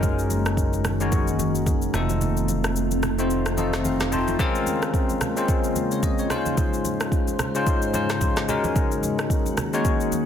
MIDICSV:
0, 0, Header, 1, 5, 480
1, 0, Start_track
1, 0, Tempo, 545455
1, 26, Time_signature, 4, 2, 24, 8
1, 9024, End_track
2, 0, Start_track
2, 0, Title_t, "Tine electric piano"
2, 0, Program_c, 0, 4
2, 0, Control_c, 0, 64, 127
2, 0, Note_on_c, 0, 56, 91
2, 0, Note_on_c, 0, 61, 84
2, 0, Note_on_c, 0, 63, 84
2, 0, Note_on_c, 0, 66, 81
2, 0, Note_on_c, 0, 70, 94
2, 561, Note_off_c, 0, 56, 0
2, 563, Note_off_c, 0, 61, 0
2, 565, Note_off_c, 0, 63, 0
2, 566, Note_off_c, 0, 66, 0
2, 568, Note_off_c, 0, 70, 0
2, 883, Note_on_c, 0, 56, 86
2, 887, Note_on_c, 0, 61, 80
2, 890, Note_on_c, 0, 63, 77
2, 893, Note_on_c, 0, 66, 80
2, 897, Note_on_c, 0, 73, 91
2, 1645, Note_off_c, 0, 56, 0
2, 1646, Note_off_c, 0, 61, 0
2, 1648, Note_off_c, 0, 63, 0
2, 1650, Note_off_c, 0, 66, 0
2, 1651, Note_off_c, 0, 73, 0
2, 1704, Note_on_c, 0, 57, 88
2, 1708, Note_on_c, 0, 60, 83
2, 1711, Note_on_c, 0, 63, 83
2, 1714, Note_on_c, 0, 65, 83
2, 1718, Note_on_c, 0, 69, 99
2, 1719, Control_c, 0, 64, 0
2, 1858, Control_c, 0, 64, 127
2, 2481, Note_off_c, 0, 57, 0
2, 2483, Note_off_c, 0, 60, 0
2, 2484, Note_off_c, 0, 63, 0
2, 2486, Note_off_c, 0, 65, 0
2, 2488, Note_off_c, 0, 69, 0
2, 2804, Note_on_c, 0, 57, 85
2, 2807, Note_on_c, 0, 60, 79
2, 2810, Note_on_c, 0, 63, 76
2, 2813, Note_on_c, 0, 65, 77
2, 2817, Note_on_c, 0, 72, 95
2, 3085, Note_off_c, 0, 57, 0
2, 3086, Note_off_c, 0, 60, 0
2, 3088, Note_off_c, 0, 63, 0
2, 3090, Note_off_c, 0, 65, 0
2, 3092, Note_off_c, 0, 72, 0
2, 3144, Note_on_c, 0, 57, 81
2, 3147, Note_on_c, 0, 60, 72
2, 3150, Note_on_c, 0, 63, 70
2, 3151, Note_on_c, 0, 75, 71
2, 3154, Note_on_c, 0, 65, 71
2, 3157, Note_on_c, 0, 69, 83
2, 3372, Note_off_c, 0, 75, 0
2, 3391, Note_on_c, 0, 77, 70
2, 3544, Note_off_c, 0, 57, 0
2, 3546, Note_off_c, 0, 60, 0
2, 3548, Note_off_c, 0, 63, 0
2, 3549, Note_off_c, 0, 65, 0
2, 3551, Note_off_c, 0, 69, 0
2, 3612, Note_off_c, 0, 77, 0
2, 3623, Note_on_c, 0, 57, 86
2, 3626, Note_on_c, 0, 60, 77
2, 3630, Note_on_c, 0, 63, 76
2, 3630, Note_on_c, 0, 81, 71
2, 3633, Note_on_c, 0, 65, 77
2, 3637, Note_on_c, 0, 72, 93
2, 3824, Note_off_c, 0, 57, 0
2, 3826, Note_off_c, 0, 60, 0
2, 3828, Note_off_c, 0, 63, 0
2, 3829, Note_off_c, 0, 65, 0
2, 3831, Note_off_c, 0, 72, 0
2, 3851, Note_off_c, 0, 81, 0
2, 3863, Note_on_c, 0, 56, 118
2, 3867, Note_on_c, 0, 60, 105
2, 3870, Note_on_c, 0, 61, 102
2, 3874, Note_on_c, 0, 65, 104
2, 3877, Note_on_c, 0, 70, 121
2, 3878, Control_c, 0, 64, 0
2, 4032, Control_c, 0, 64, 127
2, 4544, Note_off_c, 0, 56, 0
2, 4546, Note_off_c, 0, 60, 0
2, 4548, Note_off_c, 0, 61, 0
2, 4550, Note_off_c, 0, 65, 0
2, 4551, Note_off_c, 0, 70, 0
2, 4722, Note_on_c, 0, 56, 89
2, 4725, Note_on_c, 0, 60, 76
2, 4729, Note_on_c, 0, 61, 77
2, 4732, Note_on_c, 0, 65, 78
2, 4736, Note_on_c, 0, 72, 95
2, 5071, Note_off_c, 0, 72, 0
2, 5210, Note_on_c, 0, 73, 68
2, 5304, Note_off_c, 0, 73, 0
2, 5310, Note_on_c, 0, 75, 69
2, 5440, Note_off_c, 0, 75, 0
2, 5449, Note_on_c, 0, 73, 64
2, 5484, Note_off_c, 0, 56, 0
2, 5486, Note_off_c, 0, 60, 0
2, 5487, Note_off_c, 0, 61, 0
2, 5489, Note_off_c, 0, 65, 0
2, 5544, Note_on_c, 0, 56, 86
2, 5547, Note_on_c, 0, 61, 81
2, 5551, Note_on_c, 0, 63, 82
2, 5554, Note_on_c, 0, 65, 82
2, 5557, Control_c, 0, 64, 0
2, 5557, Note_on_c, 0, 72, 101
2, 5675, Note_off_c, 0, 73, 0
2, 5711, Control_c, 0, 64, 127
2, 6321, Note_off_c, 0, 56, 0
2, 6322, Note_off_c, 0, 61, 0
2, 6324, Note_off_c, 0, 63, 0
2, 6326, Note_off_c, 0, 65, 0
2, 6327, Note_off_c, 0, 72, 0
2, 6644, Note_on_c, 0, 56, 82
2, 6647, Note_on_c, 0, 61, 78
2, 6651, Note_on_c, 0, 63, 79
2, 6654, Note_on_c, 0, 65, 79
2, 6657, Note_on_c, 0, 72, 96
2, 6925, Note_off_c, 0, 56, 0
2, 6927, Note_off_c, 0, 61, 0
2, 6928, Note_off_c, 0, 63, 0
2, 6930, Note_off_c, 0, 65, 0
2, 6931, Note_off_c, 0, 72, 0
2, 6984, Note_on_c, 0, 56, 77
2, 6987, Note_on_c, 0, 61, 72
2, 6991, Note_on_c, 0, 63, 70
2, 6994, Note_on_c, 0, 65, 72
2, 6998, Note_on_c, 0, 72, 89
2, 7385, Note_off_c, 0, 56, 0
2, 7386, Note_off_c, 0, 61, 0
2, 7388, Note_off_c, 0, 63, 0
2, 7390, Note_off_c, 0, 65, 0
2, 7391, Note_off_c, 0, 72, 0
2, 7465, Note_on_c, 0, 56, 93
2, 7468, Note_on_c, 0, 61, 82
2, 7471, Note_on_c, 0, 63, 81
2, 7475, Note_on_c, 0, 66, 81
2, 7478, Control_c, 0, 64, 0
2, 7478, Note_on_c, 0, 70, 99
2, 7637, Control_c, 0, 64, 127
2, 8241, Note_off_c, 0, 56, 0
2, 8243, Note_off_c, 0, 61, 0
2, 8244, Note_off_c, 0, 63, 0
2, 8246, Note_off_c, 0, 66, 0
2, 8248, Note_off_c, 0, 70, 0
2, 8564, Note_on_c, 0, 56, 89
2, 8568, Note_on_c, 0, 61, 76
2, 8571, Note_on_c, 0, 63, 81
2, 8574, Note_on_c, 0, 66, 83
2, 8578, Note_on_c, 0, 73, 96
2, 9024, Note_off_c, 0, 56, 0
2, 9024, Note_off_c, 0, 61, 0
2, 9024, Note_off_c, 0, 63, 0
2, 9024, Note_off_c, 0, 66, 0
2, 9024, Note_off_c, 0, 73, 0
2, 9024, End_track
3, 0, Start_track
3, 0, Title_t, "Ambient pad"
3, 0, Program_c, 1, 92
3, 0, Note_on_c, 1, 51, 83
3, 0, Note_on_c, 1, 56, 75
3, 0, Note_on_c, 1, 58, 76
3, 0, Note_on_c, 1, 66, 91
3, 1671, Note_off_c, 1, 56, 0
3, 1687, Note_off_c, 1, 58, 0
3, 1687, Note_off_c, 1, 66, 0
3, 1707, Note_on_c, 1, 57, 78
3, 1707, Note_on_c, 1, 60, 75
3, 1707, Note_on_c, 1, 65, 94
3, 3831, Note_off_c, 1, 51, 0
3, 3845, Note_off_c, 1, 57, 0
3, 3845, Note_off_c, 1, 60, 0
3, 3845, Note_off_c, 1, 65, 0
3, 3866, Note_on_c, 1, 49, 82
3, 3867, Note_on_c, 1, 56, 81
3, 3867, Note_on_c, 1, 58, 79
3, 3867, Note_on_c, 1, 65, 93
3, 5529, Note_off_c, 1, 49, 0
3, 5530, Note_off_c, 1, 56, 0
3, 5530, Note_off_c, 1, 58, 0
3, 5530, Note_off_c, 1, 65, 0
3, 5547, Note_on_c, 1, 44, 85
3, 5547, Note_on_c, 1, 49, 76
3, 5547, Note_on_c, 1, 56, 80
3, 5547, Note_on_c, 1, 65, 89
3, 5547, Note_on_c, 1, 72, 78
3, 7447, Note_off_c, 1, 44, 0
3, 7447, Note_off_c, 1, 49, 0
3, 7447, Note_off_c, 1, 65, 0
3, 7447, Note_off_c, 1, 72, 0
3, 7467, Note_on_c, 1, 51, 84
3, 7467, Note_on_c, 1, 58, 74
3, 7467, Note_on_c, 1, 66, 91
3, 9024, Note_off_c, 1, 51, 0
3, 9024, Note_off_c, 1, 56, 0
3, 9024, Note_off_c, 1, 58, 0
3, 9024, Note_off_c, 1, 66, 0
3, 9024, End_track
4, 0, Start_track
4, 0, Title_t, "Analog synth bass"
4, 0, Program_c, 2, 38
4, 0, Note_on_c, 2, 30, 87
4, 1671, Note_off_c, 2, 30, 0
4, 1706, Note_on_c, 2, 29, 88
4, 3831, Note_off_c, 2, 29, 0
4, 9024, End_track
5, 0, Start_track
5, 0, Title_t, "Drums"
5, 26, Note_on_c, 9, 36, 106
5, 26, Note_on_c, 9, 82, 85
5, 28, Note_on_c, 9, 64, 66
5, 114, Note_off_c, 9, 36, 0
5, 114, Note_off_c, 9, 82, 0
5, 116, Note_off_c, 9, 64, 0
5, 165, Note_on_c, 9, 82, 50
5, 253, Note_off_c, 9, 82, 0
5, 266, Note_on_c, 9, 63, 60
5, 267, Note_on_c, 9, 82, 78
5, 354, Note_off_c, 9, 63, 0
5, 355, Note_off_c, 9, 82, 0
5, 403, Note_on_c, 9, 82, 46
5, 406, Note_on_c, 9, 37, 90
5, 491, Note_off_c, 9, 82, 0
5, 494, Note_off_c, 9, 37, 0
5, 503, Note_on_c, 9, 36, 94
5, 507, Note_on_c, 9, 82, 66
5, 591, Note_off_c, 9, 36, 0
5, 595, Note_off_c, 9, 82, 0
5, 642, Note_on_c, 9, 82, 46
5, 646, Note_on_c, 9, 63, 46
5, 730, Note_off_c, 9, 82, 0
5, 734, Note_off_c, 9, 63, 0
5, 744, Note_on_c, 9, 82, 83
5, 745, Note_on_c, 9, 37, 93
5, 746, Note_on_c, 9, 64, 71
5, 832, Note_off_c, 9, 82, 0
5, 833, Note_off_c, 9, 37, 0
5, 834, Note_off_c, 9, 64, 0
5, 883, Note_on_c, 9, 82, 51
5, 971, Note_off_c, 9, 82, 0
5, 986, Note_on_c, 9, 82, 72
5, 987, Note_on_c, 9, 36, 111
5, 1074, Note_off_c, 9, 82, 0
5, 1075, Note_off_c, 9, 36, 0
5, 1121, Note_on_c, 9, 82, 53
5, 1209, Note_off_c, 9, 82, 0
5, 1226, Note_on_c, 9, 63, 72
5, 1226, Note_on_c, 9, 82, 96
5, 1314, Note_off_c, 9, 63, 0
5, 1314, Note_off_c, 9, 82, 0
5, 1364, Note_on_c, 9, 82, 52
5, 1452, Note_off_c, 9, 82, 0
5, 1465, Note_on_c, 9, 36, 95
5, 1466, Note_on_c, 9, 63, 78
5, 1466, Note_on_c, 9, 82, 82
5, 1553, Note_off_c, 9, 36, 0
5, 1554, Note_off_c, 9, 63, 0
5, 1554, Note_off_c, 9, 82, 0
5, 1600, Note_on_c, 9, 82, 46
5, 1688, Note_off_c, 9, 82, 0
5, 1706, Note_on_c, 9, 37, 82
5, 1706, Note_on_c, 9, 64, 65
5, 1707, Note_on_c, 9, 82, 93
5, 1794, Note_off_c, 9, 37, 0
5, 1794, Note_off_c, 9, 64, 0
5, 1795, Note_off_c, 9, 82, 0
5, 1843, Note_on_c, 9, 82, 54
5, 1845, Note_on_c, 9, 63, 80
5, 1931, Note_off_c, 9, 82, 0
5, 1933, Note_off_c, 9, 63, 0
5, 1947, Note_on_c, 9, 82, 81
5, 1949, Note_on_c, 9, 64, 69
5, 2035, Note_off_c, 9, 82, 0
5, 2037, Note_off_c, 9, 64, 0
5, 2085, Note_on_c, 9, 82, 46
5, 2173, Note_off_c, 9, 82, 0
5, 2186, Note_on_c, 9, 63, 60
5, 2187, Note_on_c, 9, 82, 79
5, 2274, Note_off_c, 9, 63, 0
5, 2275, Note_off_c, 9, 82, 0
5, 2323, Note_on_c, 9, 82, 48
5, 2326, Note_on_c, 9, 37, 93
5, 2411, Note_off_c, 9, 82, 0
5, 2414, Note_off_c, 9, 37, 0
5, 2428, Note_on_c, 9, 82, 65
5, 2516, Note_off_c, 9, 82, 0
5, 2562, Note_on_c, 9, 82, 50
5, 2566, Note_on_c, 9, 63, 48
5, 2650, Note_off_c, 9, 82, 0
5, 2654, Note_off_c, 9, 63, 0
5, 2665, Note_on_c, 9, 82, 80
5, 2666, Note_on_c, 9, 37, 92
5, 2667, Note_on_c, 9, 64, 74
5, 2753, Note_off_c, 9, 82, 0
5, 2754, Note_off_c, 9, 37, 0
5, 2755, Note_off_c, 9, 64, 0
5, 2804, Note_on_c, 9, 82, 52
5, 2892, Note_off_c, 9, 82, 0
5, 2907, Note_on_c, 9, 82, 72
5, 2995, Note_off_c, 9, 82, 0
5, 3043, Note_on_c, 9, 82, 52
5, 3045, Note_on_c, 9, 37, 88
5, 3131, Note_off_c, 9, 82, 0
5, 3133, Note_off_c, 9, 37, 0
5, 3146, Note_on_c, 9, 63, 72
5, 3147, Note_on_c, 9, 82, 92
5, 3234, Note_off_c, 9, 63, 0
5, 3235, Note_off_c, 9, 82, 0
5, 3285, Note_on_c, 9, 82, 52
5, 3287, Note_on_c, 9, 37, 94
5, 3287, Note_on_c, 9, 38, 66
5, 3373, Note_off_c, 9, 82, 0
5, 3375, Note_off_c, 9, 37, 0
5, 3375, Note_off_c, 9, 38, 0
5, 3386, Note_on_c, 9, 82, 80
5, 3387, Note_on_c, 9, 63, 79
5, 3474, Note_off_c, 9, 82, 0
5, 3475, Note_off_c, 9, 63, 0
5, 3521, Note_on_c, 9, 82, 45
5, 3525, Note_on_c, 9, 37, 91
5, 3525, Note_on_c, 9, 38, 68
5, 3609, Note_off_c, 9, 82, 0
5, 3613, Note_off_c, 9, 37, 0
5, 3613, Note_off_c, 9, 38, 0
5, 3628, Note_on_c, 9, 64, 63
5, 3628, Note_on_c, 9, 82, 93
5, 3716, Note_off_c, 9, 64, 0
5, 3716, Note_off_c, 9, 82, 0
5, 3764, Note_on_c, 9, 82, 55
5, 3765, Note_on_c, 9, 63, 76
5, 3852, Note_off_c, 9, 82, 0
5, 3853, Note_off_c, 9, 63, 0
5, 3866, Note_on_c, 9, 36, 108
5, 3868, Note_on_c, 9, 82, 87
5, 3869, Note_on_c, 9, 64, 68
5, 3954, Note_off_c, 9, 36, 0
5, 3956, Note_off_c, 9, 82, 0
5, 3957, Note_off_c, 9, 64, 0
5, 4006, Note_on_c, 9, 82, 47
5, 4094, Note_off_c, 9, 82, 0
5, 4106, Note_on_c, 9, 63, 60
5, 4107, Note_on_c, 9, 82, 78
5, 4194, Note_off_c, 9, 63, 0
5, 4195, Note_off_c, 9, 82, 0
5, 4244, Note_on_c, 9, 82, 47
5, 4247, Note_on_c, 9, 37, 91
5, 4332, Note_off_c, 9, 82, 0
5, 4335, Note_off_c, 9, 37, 0
5, 4344, Note_on_c, 9, 36, 95
5, 4348, Note_on_c, 9, 82, 70
5, 4432, Note_off_c, 9, 36, 0
5, 4436, Note_off_c, 9, 82, 0
5, 4483, Note_on_c, 9, 82, 48
5, 4486, Note_on_c, 9, 63, 45
5, 4571, Note_off_c, 9, 82, 0
5, 4574, Note_off_c, 9, 63, 0
5, 4584, Note_on_c, 9, 82, 84
5, 4585, Note_on_c, 9, 37, 94
5, 4586, Note_on_c, 9, 64, 73
5, 4672, Note_off_c, 9, 82, 0
5, 4673, Note_off_c, 9, 37, 0
5, 4674, Note_off_c, 9, 64, 0
5, 4724, Note_on_c, 9, 82, 54
5, 4812, Note_off_c, 9, 82, 0
5, 4826, Note_on_c, 9, 82, 70
5, 4827, Note_on_c, 9, 36, 105
5, 4914, Note_off_c, 9, 82, 0
5, 4915, Note_off_c, 9, 36, 0
5, 4962, Note_on_c, 9, 82, 51
5, 5050, Note_off_c, 9, 82, 0
5, 5065, Note_on_c, 9, 63, 73
5, 5067, Note_on_c, 9, 82, 95
5, 5153, Note_off_c, 9, 63, 0
5, 5155, Note_off_c, 9, 82, 0
5, 5204, Note_on_c, 9, 82, 51
5, 5292, Note_off_c, 9, 82, 0
5, 5305, Note_on_c, 9, 36, 94
5, 5306, Note_on_c, 9, 63, 81
5, 5306, Note_on_c, 9, 82, 83
5, 5393, Note_off_c, 9, 36, 0
5, 5394, Note_off_c, 9, 63, 0
5, 5394, Note_off_c, 9, 82, 0
5, 5440, Note_on_c, 9, 82, 47
5, 5528, Note_off_c, 9, 82, 0
5, 5546, Note_on_c, 9, 37, 84
5, 5547, Note_on_c, 9, 64, 64
5, 5547, Note_on_c, 9, 82, 90
5, 5634, Note_off_c, 9, 37, 0
5, 5635, Note_off_c, 9, 64, 0
5, 5635, Note_off_c, 9, 82, 0
5, 5683, Note_on_c, 9, 82, 54
5, 5684, Note_on_c, 9, 63, 76
5, 5771, Note_off_c, 9, 82, 0
5, 5772, Note_off_c, 9, 63, 0
5, 5786, Note_on_c, 9, 36, 111
5, 5786, Note_on_c, 9, 82, 83
5, 5789, Note_on_c, 9, 64, 67
5, 5874, Note_off_c, 9, 36, 0
5, 5874, Note_off_c, 9, 82, 0
5, 5877, Note_off_c, 9, 64, 0
5, 5925, Note_on_c, 9, 82, 48
5, 6013, Note_off_c, 9, 82, 0
5, 6027, Note_on_c, 9, 63, 61
5, 6027, Note_on_c, 9, 82, 82
5, 6115, Note_off_c, 9, 63, 0
5, 6115, Note_off_c, 9, 82, 0
5, 6164, Note_on_c, 9, 82, 49
5, 6166, Note_on_c, 9, 37, 91
5, 6252, Note_off_c, 9, 82, 0
5, 6254, Note_off_c, 9, 37, 0
5, 6263, Note_on_c, 9, 36, 94
5, 6268, Note_on_c, 9, 82, 67
5, 6351, Note_off_c, 9, 36, 0
5, 6356, Note_off_c, 9, 82, 0
5, 6402, Note_on_c, 9, 82, 48
5, 6406, Note_on_c, 9, 63, 47
5, 6490, Note_off_c, 9, 82, 0
5, 6494, Note_off_c, 9, 63, 0
5, 6505, Note_on_c, 9, 82, 80
5, 6506, Note_on_c, 9, 37, 94
5, 6506, Note_on_c, 9, 64, 74
5, 6593, Note_off_c, 9, 82, 0
5, 6594, Note_off_c, 9, 37, 0
5, 6594, Note_off_c, 9, 64, 0
5, 6644, Note_on_c, 9, 82, 52
5, 6732, Note_off_c, 9, 82, 0
5, 6746, Note_on_c, 9, 82, 72
5, 6747, Note_on_c, 9, 36, 109
5, 6834, Note_off_c, 9, 82, 0
5, 6835, Note_off_c, 9, 36, 0
5, 6882, Note_on_c, 9, 82, 52
5, 6970, Note_off_c, 9, 82, 0
5, 6986, Note_on_c, 9, 63, 70
5, 6987, Note_on_c, 9, 82, 92
5, 7074, Note_off_c, 9, 63, 0
5, 7075, Note_off_c, 9, 82, 0
5, 7125, Note_on_c, 9, 82, 50
5, 7127, Note_on_c, 9, 37, 90
5, 7127, Note_on_c, 9, 38, 63
5, 7213, Note_off_c, 9, 82, 0
5, 7215, Note_off_c, 9, 37, 0
5, 7215, Note_off_c, 9, 38, 0
5, 7226, Note_on_c, 9, 36, 91
5, 7226, Note_on_c, 9, 82, 81
5, 7227, Note_on_c, 9, 63, 81
5, 7314, Note_off_c, 9, 36, 0
5, 7314, Note_off_c, 9, 82, 0
5, 7315, Note_off_c, 9, 63, 0
5, 7360, Note_on_c, 9, 82, 45
5, 7365, Note_on_c, 9, 37, 95
5, 7365, Note_on_c, 9, 38, 66
5, 7448, Note_off_c, 9, 82, 0
5, 7453, Note_off_c, 9, 37, 0
5, 7453, Note_off_c, 9, 38, 0
5, 7468, Note_on_c, 9, 64, 61
5, 7468, Note_on_c, 9, 82, 92
5, 7556, Note_off_c, 9, 64, 0
5, 7556, Note_off_c, 9, 82, 0
5, 7604, Note_on_c, 9, 82, 53
5, 7605, Note_on_c, 9, 63, 77
5, 7692, Note_off_c, 9, 82, 0
5, 7693, Note_off_c, 9, 63, 0
5, 7707, Note_on_c, 9, 36, 109
5, 7708, Note_on_c, 9, 82, 85
5, 7709, Note_on_c, 9, 64, 67
5, 7795, Note_off_c, 9, 36, 0
5, 7796, Note_off_c, 9, 82, 0
5, 7797, Note_off_c, 9, 64, 0
5, 7846, Note_on_c, 9, 82, 49
5, 7934, Note_off_c, 9, 82, 0
5, 7947, Note_on_c, 9, 63, 61
5, 7948, Note_on_c, 9, 82, 78
5, 8035, Note_off_c, 9, 63, 0
5, 8036, Note_off_c, 9, 82, 0
5, 8085, Note_on_c, 9, 82, 48
5, 8087, Note_on_c, 9, 37, 94
5, 8173, Note_off_c, 9, 82, 0
5, 8175, Note_off_c, 9, 37, 0
5, 8184, Note_on_c, 9, 36, 91
5, 8188, Note_on_c, 9, 82, 67
5, 8272, Note_off_c, 9, 36, 0
5, 8276, Note_off_c, 9, 82, 0
5, 8323, Note_on_c, 9, 82, 48
5, 8327, Note_on_c, 9, 63, 48
5, 8411, Note_off_c, 9, 82, 0
5, 8415, Note_off_c, 9, 63, 0
5, 8425, Note_on_c, 9, 82, 84
5, 8426, Note_on_c, 9, 37, 94
5, 8427, Note_on_c, 9, 64, 75
5, 8513, Note_off_c, 9, 82, 0
5, 8514, Note_off_c, 9, 37, 0
5, 8515, Note_off_c, 9, 64, 0
5, 8564, Note_on_c, 9, 82, 51
5, 8652, Note_off_c, 9, 82, 0
5, 8667, Note_on_c, 9, 36, 108
5, 8667, Note_on_c, 9, 82, 72
5, 8755, Note_off_c, 9, 36, 0
5, 8755, Note_off_c, 9, 82, 0
5, 8802, Note_on_c, 9, 82, 52
5, 8890, Note_off_c, 9, 82, 0
5, 8906, Note_on_c, 9, 63, 68
5, 8906, Note_on_c, 9, 82, 88
5, 8994, Note_off_c, 9, 63, 0
5, 8994, Note_off_c, 9, 82, 0
5, 9024, End_track
0, 0, End_of_file